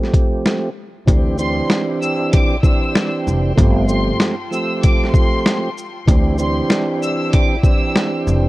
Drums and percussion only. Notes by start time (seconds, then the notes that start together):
0.03 snare
0.14 kick, closed hi-hat
0.46 snare, closed hi-hat
1.08 kick, closed hi-hat
1.38 shaker
1.70 finger snap, snare, closed hi-hat
2.03 shaker
2.33 kick, closed hi-hat
2.64 kick, shaker
2.96 finger snap, snare, closed hi-hat
3.27 shaker
3.58 kick, closed hi-hat
3.89 shaker
4.20 finger snap, snare, closed hi-hat
4.53 shaker
4.83 kick, closed hi-hat
5.03 snare
5.14 kick, shaker
5.46 finger snap, snare, closed hi-hat
5.77 shaker
6.08 kick, closed hi-hat
6.38 shaker
6.70 finger snap, snare, closed hi-hat
7.03 shaker
7.33 kick, closed hi-hat
7.64 kick, shaker
7.96 finger snap, snare, closed hi-hat
8.27 shaker